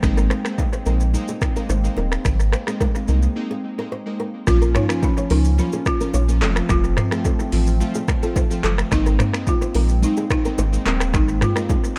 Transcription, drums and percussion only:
0.03 finger snap, kick, cross-stick, low conga, shaker
0.18 shaker
0.30 finger snap, cross-stick, shaker
0.45 finger snap, cross-stick, shaker
0.58 kick, high bongo, shaker
0.73 shaker
0.86 low bongo, shaker
1.00 shaker
1.14 low conga, shaker
1.28 low bongo, shaker
1.41 finger snap, kick, cross-stick, low bongo, shaker
1.56 shaker
1.69 high bongo, shaker
1.84 shaker
1.97 high bongo, low conga
2.12 finger snap, cross-stick, shaker
2.25 finger snap, kick, cross-stick, low conga, shaker
2.40 shaker
2.52 finger snap, cross-stick, shaker
2.67 finger snap, cross-stick, shaker
2.81 kick, high bongo, shaker
2.95 high bongo, shaker
3.08 low bongo, shaker
3.22 shaker
4.47 finger snap, kick, cross-stick, low conga, shaker
4.62 shaker
4.75 finger snap, cross-stick, mid tom, shaker
4.89 finger snap, cross-stick, shaker
5.03 kick, high bongo, shaker
5.17 high bongo, shaker
5.30 open hi-hat, low bongo, shaker
5.45 shaker
5.58 low conga, shaker
5.72 low bongo, shaker
5.86 finger snap, kick, cross-stick, low bongo, shaker
6.01 shaker
6.14 high bongo, shaker
6.29 shaker
6.41 clap, low conga
6.56 finger snap, cross-stick, shaker
6.69 finger snap, kick, cross-stick, low conga, shaker
6.84 shaker
6.97 finger snap, cross-stick, mid tom, shaker
7.11 finger snap, cross-stick, shaker
7.25 kick, high bongo, shaker
7.40 high bongo, shaker
7.52 open hi-hat, low bongo, shaker
7.67 shaker
7.80 low conga, shaker
7.95 low bongo, shaker
8.08 finger snap, kick, cross-stick, low bongo, shaker
8.23 shaker
8.36 kick, high bongo, shaker
8.51 shaker
8.63 clap, low conga
8.78 finger snap, cross-stick, shaker
8.92 finger snap, kick, cross-stick, low conga, shaker
9.06 shaker
9.19 finger snap, cross-stick, mid tom, shaker
9.33 finger snap, cross-stick, shaker
9.47 kick, high bongo, shaker
9.62 high bongo, shaker
9.74 open hi-hat, low bongo, shaker
9.89 shaker
10.03 low conga, shaker
10.17 low bongo, shaker
10.30 finger snap, kick, cross-stick, low bongo, shaker
10.45 shaker
10.58 high bongo, shaker
10.73 shaker
10.86 clap, low conga
11.00 finger snap, cross-stick, shaker
11.14 finger snap, kick, cross-stick, low conga, shaker
11.28 shaker
11.41 finger snap, cross-stick, mid tom, shaker
11.56 finger snap, cross-stick, shaker
11.69 kick, high bongo, shaker
11.84 high bongo, shaker

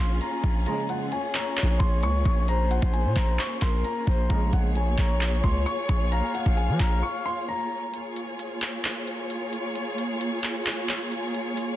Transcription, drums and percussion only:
0.21 closed hi-hat
0.44 kick, closed hi-hat
0.66 closed hi-hat
0.89 closed hi-hat
1.12 closed hi-hat
1.35 clap, closed hi-hat
1.57 clap, closed hi-hat
1.80 kick, closed hi-hat
2.03 closed hi-hat
2.25 kick, closed hi-hat
2.48 closed hi-hat
2.71 closed hi-hat
2.82 kick
2.94 closed hi-hat
3.16 kick, clap, closed hi-hat
3.39 clap, closed hi-hat
3.62 kick, clap, closed hi-hat
3.85 closed hi-hat
4.07 kick, closed hi-hat
4.30 kick, closed hi-hat
4.53 kick, closed hi-hat
4.76 closed hi-hat
4.98 kick, clap, closed hi-hat
5.21 clap, closed hi-hat
5.44 kick, closed hi-hat
5.67 closed hi-hat
5.89 kick, closed hi-hat
6.12 closed hi-hat
6.35 closed hi-hat
6.46 kick
6.57 closed hi-hat
6.80 kick, clap, closed hi-hat
7.94 closed hi-hat
8.16 closed hi-hat
8.39 closed hi-hat
8.62 clap, closed hi-hat
8.85 clap, closed hi-hat
9.07 closed hi-hat
9.30 closed hi-hat
9.53 closed hi-hat
9.76 closed hi-hat
9.98 closed hi-hat
10.21 closed hi-hat
10.44 clap, closed hi-hat
10.66 clap, closed hi-hat
10.89 clap, closed hi-hat
11.12 closed hi-hat
11.35 closed hi-hat
11.57 closed hi-hat

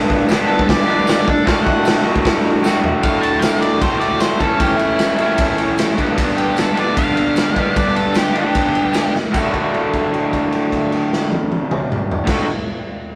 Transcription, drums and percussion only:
0.10 kick
0.29 snare, open hi-hat, tambourine
0.59 kick
0.69 kick, snare, open hi-hat
1.07 snare, open hi-hat, tambourine
1.28 kick
1.47 kick, snare, open hi-hat
1.67 kick
1.85 snare, open hi-hat, tambourine
2.16 kick
2.25 kick, snare, open hi-hat
2.64 snare, tambourine
2.84 floor tom
3.03 kick, ride
3.23 ride
3.42 snare, ride, tambourine
3.62 ride
3.82 kick, ride
4.01 ride
4.20 snare, ride, tambourine
4.40 kick, ride
4.60 kick, ride
4.79 ride
4.99 snare, ride, tambourine
5.18 ride
5.38 kick, ride
5.58 ride
5.78 snare, ride, tambourine
5.98 kick, ride
6.18 kick, ride
6.38 ride
6.56 snare, ride, tambourine
6.77 ride
6.97 kick, ride
7.17 ride
7.36 snare, ride, tambourine
7.56 kick, ride
7.76 kick, ride
7.96 ride
8.14 snare, ride, tambourine
8.35 ride
8.55 kick, ride
8.75 ride
8.93 snare, ride, tambourine
9.15 snare
9.34 kick, crash, tambourine
9.54 kick, crash
9.74 crash
9.94 kick, crash
10.14 crash
10.33 kick, crash
10.52 crash
10.72 kick, crash
10.92 crash
11.13 snare
11.32 high tom
11.52 high tom
11.71 mid tom
11.92 mid tom
12.11 floor tom
12.27 kick, snare, crash

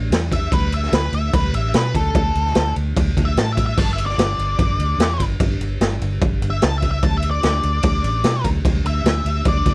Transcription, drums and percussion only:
0.12 snare, ride
0.32 kick, ride
0.52 kick, ride
0.72 ride
0.83 snare
0.93 snare, ride
1.13 ride
1.33 kick, ride
1.54 ride
1.74 snare, ride
1.95 kick, ride
2.15 kick, ride
2.35 ride
2.46 snare
2.55 snare, ride
2.76 ride
2.97 kick, ride
3.17 kick, ride
3.37 snare, ride
3.57 kick, ride
3.78 kick, crash
3.98 ride
4.09 snare
4.19 snare, ride
4.39 ride
4.59 kick, ride
4.80 ride
5.00 snare, ride
5.20 kick, ride
5.40 kick, ride
5.61 ride
5.81 snare, ride
6.01 ride
6.22 kick, ride
6.42 ride
6.62 snare, ride
6.82 kick, ride
7.03 kick, ride
7.22 ride
7.43 snare, ride
7.63 ride
7.83 kick, ride
8.04 ride
8.24 snare, ride
8.44 kick, ride
8.65 kick, ride
8.86 ride
9.06 snare, ride
9.26 ride
9.45 kick, ride
9.66 kick, ride

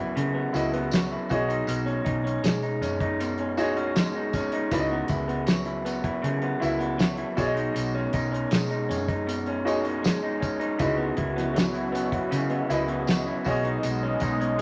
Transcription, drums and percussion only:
0.17 closed hi-hat
0.54 closed hi-hat, tambourine
0.74 closed hi-hat
0.91 snare, closed hi-hat, tambourine
1.29 kick, closed hi-hat, tambourine
1.50 closed hi-hat
1.67 closed hi-hat, tambourine
1.88 closed hi-hat
2.06 kick, closed hi-hat
2.27 closed hi-hat
2.44 snare, closed hi-hat, tambourine
2.62 closed hi-hat
2.82 closed hi-hat, tambourine
3.00 kick, closed hi-hat
3.20 closed hi-hat, tambourine
3.38 closed hi-hat
3.57 closed hi-hat, tambourine
3.77 closed hi-hat
3.96 snare, closed hi-hat, tambourine
4.33 kick, closed hi-hat, tambourine
4.52 closed hi-hat
4.71 kick, closed hi-hat, tambourine
5.08 kick, closed hi-hat, tambourine
5.29 closed hi-hat
5.47 snare, closed hi-hat, tambourine
5.65 closed hi-hat
5.86 closed hi-hat, tambourine
6.04 kick, closed hi-hat
6.24 closed hi-hat
6.42 closed hi-hat
6.62 closed hi-hat, tambourine
6.81 closed hi-hat
6.99 snare, closed hi-hat, tambourine
7.17 closed hi-hat
7.37 kick, closed hi-hat, tambourine
7.57 closed hi-hat
7.76 closed hi-hat, tambourine
8.13 kick, closed hi-hat, tambourine
8.34 closed hi-hat
8.51 snare, closed hi-hat, tambourine
8.69 closed hi-hat
8.91 closed hi-hat, tambourine
9.09 kick, closed hi-hat
9.29 closed hi-hat, tambourine
9.46 closed hi-hat
9.67 closed hi-hat, tambourine
9.85 closed hi-hat
10.04 snare, closed hi-hat, tambourine
10.42 kick, closed hi-hat, tambourine
10.61 closed hi-hat
10.79 kick, closed hi-hat, tambourine
11.17 kick, closed hi-hat
11.38 snare, closed hi-hat
11.56 snare, closed hi-hat, tambourine
11.75 closed hi-hat
11.95 closed hi-hat, tambourine
12.12 kick, closed hi-hat
12.32 closed hi-hat, tambourine
12.50 closed hi-hat
12.70 closed hi-hat, tambourine
12.88 closed hi-hat
13.07 snare, closed hi-hat, tambourine
13.44 kick, open hi-hat, tambourine
13.65 closed hi-hat
13.83 closed hi-hat, tambourine
14.20 kick, closed hi-hat, tambourine
14.41 closed hi-hat

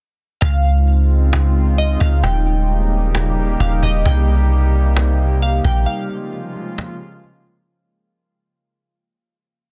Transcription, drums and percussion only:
0.42 cajon bass
0.65 cajon slap
0.87 cajon slap
1.10 cajon slap
1.33 cajon slap
1.56 cajon slap
1.78 cajon slap
2.01 cajon bass
2.24 cajon bass
2.47 cajon slap
2.69 cajon slap
2.92 cajon slap
3.15 cajon slap
3.37 cajon slap
3.60 cajon bass
3.83 cajon bass
4.05 cajon bass
4.28 cajon slap
4.51 cajon slap
4.74 cajon slap
4.96 cajon slap
5.19 cajon slap
5.42 cajon slap
5.65 cajon bass
5.87 cajon slap
6.10 cajon slap
6.33 cajon slap
6.55 cajon slap
6.78 cajon slap
7.01 cajon slap
7.24 cajon slap
7.46 cajon slap

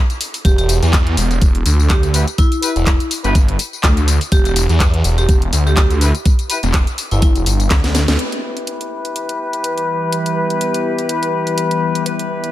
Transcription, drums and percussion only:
0.10 closed hi-hat, tambourine
0.21 open hi-hat, tambourine
0.34 open hi-hat, tambourine
0.45 kick, closed hi-hat, tambourine
0.58 closed hi-hat, tambourine
0.69 open hi-hat, tambourine
0.83 closed hi-hat, tambourine
0.93 kick, clap, closed hi-hat, tambourine
1.07 closed hi-hat
1.17 open hi-hat, tambourine
1.31 closed hi-hat, tambourine
1.42 kick, closed hi-hat, tambourine
1.55 closed hi-hat
1.66 open hi-hat, tambourine
1.80 tambourine
1.90 kick, clap, closed hi-hat, tambourine
2.03 closed hi-hat, tambourine
2.14 open hi-hat, tambourine
2.27 closed hi-hat, tambourine
2.38 kick, closed hi-hat, tambourine
2.52 closed hi-hat, tambourine
2.62 open hi-hat, tambourine
2.76 closed hi-hat, tambourine
2.87 kick, clap, closed hi-hat, tambourine
3.00 closed hi-hat, tambourine
3.11 open hi-hat, tambourine
3.24 closed hi-hat, tambourine
3.35 kick, closed hi-hat, tambourine
3.48 closed hi-hat
3.59 open hi-hat, tambourine
3.73 tambourine
3.83 kick, clap, closed hi-hat, tambourine
3.97 closed hi-hat, tambourine
4.08 open hi-hat, tambourine
4.21 open hi-hat, tambourine
4.32 kick, closed hi-hat, tambourine
4.45 closed hi-hat, tambourine
4.56 open hi-hat, tambourine
4.69 closed hi-hat, tambourine
4.80 kick, clap, closed hi-hat, tambourine
4.94 closed hi-hat
5.04 open hi-hat, tambourine
5.18 closed hi-hat, tambourine
5.29 kick, closed hi-hat, tambourine
5.42 closed hi-hat
5.53 open hi-hat, tambourine
5.67 tambourine
5.77 kick, clap, closed hi-hat, tambourine
5.90 closed hi-hat, tambourine
6.01 open hi-hat, tambourine
6.15 closed hi-hat, tambourine
6.25 kick, closed hi-hat, tambourine
6.39 closed hi-hat, tambourine
6.50 open hi-hat, tambourine
6.63 closed hi-hat, tambourine
6.74 kick, clap, closed hi-hat, tambourine
6.87 closed hi-hat, tambourine
6.98 open hi-hat, tambourine
7.11 closed hi-hat, tambourine
7.22 kick, closed hi-hat, tambourine
7.36 closed hi-hat, tambourine
7.46 open hi-hat, tambourine
7.60 closed hi-hat, tambourine
7.70 kick, snare, clap, closed hi-hat, tambourine
7.84 snare, closed hi-hat, tambourine
7.95 snare, open hi-hat, tambourine
8.08 snare, open hi-hat, tambourine
8.19 closed hi-hat
8.32 closed hi-hat
8.57 closed hi-hat
8.67 closed hi-hat
8.81 closed hi-hat
9.05 closed hi-hat
9.16 closed hi-hat
9.29 closed hi-hat
9.53 closed hi-hat
9.64 closed hi-hat
9.78 closed hi-hat
10.12 closed hi-hat
10.26 closed hi-hat
10.50 closed hi-hat
10.61 closed hi-hat
10.74 closed hi-hat
10.99 closed hi-hat
11.09 closed hi-hat
11.23 closed hi-hat
11.47 closed hi-hat
11.58 closed hi-hat
11.71 closed hi-hat
11.95 closed hi-hat
12.06 closed hi-hat
12.19 closed hi-hat
12.44 closed hi-hat

